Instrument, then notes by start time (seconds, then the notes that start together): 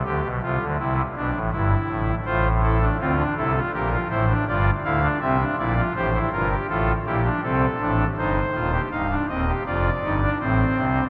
pipe organ
0.05 D2 D3 G4
0.23 B1 B2
0.41 C2 C3 F4
0.61 D2 D3
0.79 C2 C3 E4
1.16 B1 B2 D4
1.34 A1 A2
1.52 G1 G2 E4
1.88 A1 A2
2.25 A1 A2 F4 C5
2.62 E4 A4
2.81 D4
2.99 D2 D3 C4 F4
3.19 D4
3.37 C2 C3 E4 A4
3.55 F4
3.73 A#1 A#2 G4 A#4
3.91 F4
4.10 A1 A2 E4 C5
4.28 D4
4.47 G1 G2 F4 D5
4.84 D2 D3 E4 F5
5.03 D4
5.21 C2 C3 C4 E5
5.40 D4
5.58 A#1 A#2 E4 D5
5.77 F4
5.96 A1 A2 G4 C5
6.14 E4
6.32 G1 G2 F4 A#4
6.51 G4
6.69 A1 A2 F4 A4
7.06 A#1 A#2 E4 G4
7.24 D4
7.43 C2 C3 C4 A4
7.81 A1 A2 D4
8.17 G1 G2 D#4 C5
8.54 D#1 D#2 F4
8.73 G4
8.91 C1 C2 D#4 F5
9.10 D4
9.28 D#1 D#2 C4 D#5
9.47 G4
9.66 F1 F2 F4 D5
10.04 G1 G2 D#4
10.22 D4
10.40 A1 A2 C4 C5
10.77 C2 C3